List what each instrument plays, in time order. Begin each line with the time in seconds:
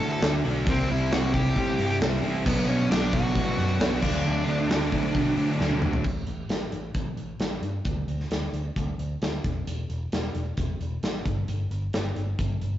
Already playing: overdriven electric guitar D3 A3 D4, distorted electric guitar A3 D4 F#4, lead electric guitar A5
0.00 picked electric bass A2, overdriven electric guitar A3 D4 F#4, open hi-hat
0.12 lead electric guitar A4 A5
0.22 picked electric bass D2, overdriven electric guitar D3 A3 D4 F#4, snare, open hi-hat
0.45 picked electric bass B1, overdriven electric guitar D3 A3 D4 F#4, open hi-hat
0.66 picked electric bass C2, overdriven electric guitar C3 G3 C4 E4, lead electric guitar C4 C5, kick, open hi-hat
0.89 picked electric bass C2, overdriven electric guitar G3 C4 E4, lead electric guitar E4 E5, open hi-hat
1.11 picked electric bass C2, overdriven electric guitar C3 G3 C4 E4, lead electric guitar F#4 F#5, snare, open hi-hat
1.33 picked electric bass C2, overdriven electric guitar G3 C4 E4, lead electric guitar G4 G5, kick, open hi-hat
1.56 picked electric bass A2, overdriven electric guitar C3 G3 C4 E4, kick, open hi-hat
1.79 picked electric bass G2, overdriven electric guitar G3 C4 E4, snare, open hi-hat
1.90 lead electric guitar G4 G5
2.00 picked electric bass C2, overdriven electric guitar C3 G3 C4 E4, snare, open hi-hat
2.23 picked electric bass A1, overdriven electric guitar C3 G3 C4 E4, open hi-hat
2.45 picked electric bass B1, overdriven electric guitar B2 F#3 B3 D4, lead electric guitar B3 B4, kick, crash
2.68 picked electric bass B1, overdriven electric guitar F#3 B3 D4, lead electric guitar C#4 C#5, open hi-hat
2.91 picked electric bass B1, overdriven electric guitar B2 F#3 B3 D4, lead electric guitar D4 D5, snare, open hi-hat
3.13 picked electric bass B1, overdriven electric guitar F#3 B3 D4, lead electric guitar F#4 F#5, kick, open hi-hat
3.35 picked electric bass A2, overdriven electric guitar B2 F#3 B3 D4, kick, open hi-hat
3.57 picked electric bass F#2, overdriven electric guitar F#3 B3 D4, snare, open hi-hat
3.80 picked electric bass B1, overdriven electric guitar B2 F#3 B3 D4, snare, open hi-hat
4.01 picked electric bass D2, overdriven electric guitar D3 F#3 A3 D4, lead electric guitar D4 D5, kick, crash
4.25 picked electric bass D2, overdriven electric guitar D3 F#3 A3 D4
4.46 picked electric bass D2, overdriven electric guitar F#3 A3 D4, open hi-hat
4.69 picked electric bass D2, overdriven electric guitar D3 F#3 A3 D4, snare, open hi-hat
4.92 picked electric bass D2, overdriven electric guitar F#3 A3 D4, kick, open hi-hat
5.14 picked electric bass B2, overdriven electric guitar D3 F#3 A3 D4, kick, open hi-hat
5.36 picked electric bass A2, overdriven electric guitar F#3 A3 D4, open hi-hat
5.59 picked electric bass D2, overdriven electric guitar D3 F#3 A3 D4, snare
5.71 high tom
5.82 picked electric bass D2, overdriven electric guitar F#3 A3 D4, mid tom
5.93 floor tom
6.04 picked electric bass A1, kick, crash
6.27 picked electric bass A1, closed hi-hat
6.49 picked electric bass A1, snare, closed hi-hat
6.72 picked electric bass A1, closed hi-hat
6.94 picked electric bass A1, kick, closed hi-hat
7.17 picked electric bass A1, closed hi-hat
7.40 picked electric bass A1, snare, closed hi-hat
7.61 picked electric bass G2, closed hi-hat
7.85 picked electric bass D2, kick, closed hi-hat
8.08 picked electric bass D2, closed hi-hat
8.20 snare
8.31 picked electric bass D2, snare, closed hi-hat
8.53 picked electric bass D2, closed hi-hat
8.76 picked electric bass D2, kick, closed hi-hat
8.98 picked electric bass D2, closed hi-hat
9.22 picked electric bass D2, snare, closed hi-hat
9.44 picked electric bass E1, kick, closed hi-hat
9.67 picked electric bass E1, closed hi-hat
9.89 picked electric bass E1, closed hi-hat
10.12 picked electric bass E1, snare, closed hi-hat
10.35 picked electric bass E1, closed hi-hat
10.57 picked electric bass E1, kick, closed hi-hat
10.81 picked electric bass E1, closed hi-hat
11.03 picked electric bass A1, snare, closed hi-hat
11.25 picked electric bass G1, kick, closed hi-hat
11.48 picked electric bass G1, closed hi-hat
11.71 picked electric bass G1, closed hi-hat
11.93 picked electric bass G1, snare, closed hi-hat
12.16 picked electric bass G1, closed hi-hat
12.39 picked electric bass G1, kick, closed hi-hat
12.62 picked electric bass G1, closed hi-hat